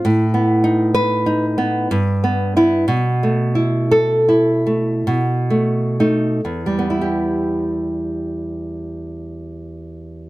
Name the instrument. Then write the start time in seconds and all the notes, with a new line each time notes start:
nylon-string guitar
0.05 A2
0.34 B3
0.64 D#4
0.94 B4
1.26 D#4
1.58 B3
1.91 G2
2.24 B3
2.56 B3 E4
2.88 B2
3.23 A3
3.55 E4
3.91 A4
4.29 E4
4.66 A3
5.07 B2
5.50 A3
6.00 A3 D#4
6.45 E2
6.66 G3
6.79 B3
6.90 E4
7.01 G4